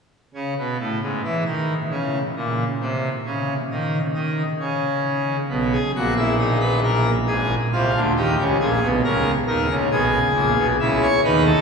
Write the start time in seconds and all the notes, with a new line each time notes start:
0.34 C#3
0.58 B2
0.79 A2
1.02 G#2
1.24 E3
1.45 D#3
1.90 C#3
2.36 A#2
2.81 C3
3.25 C#3
3.71 D#3
4.14 D#3
4.60 C#3
5.49 B1 B2
5.72 G#4
5.95 A#1 A#2 F#4
6.16 E4
6.39 D#4
6.60 B4
6.84 A#4
7.27 G#1 G#2 G#4
7.72 C2 C3 F4
7.94 D2 D3
8.16 D#2 D#3 G4
8.39 C#2 C#3
8.60 A#1 A#2 G#4
8.82 B1 B2
9.04 C#2 C#3 A#4
9.47 D#2 D#3 A#4
9.69 C#2 C#3
9.91 B1 B2 G#4
10.34 A#1 A#2
10.57 B1 B2
10.79 C#2 C#3 E4
11.02 C#5
11.24 D#2 D#3 D#4 B4
11.45 A4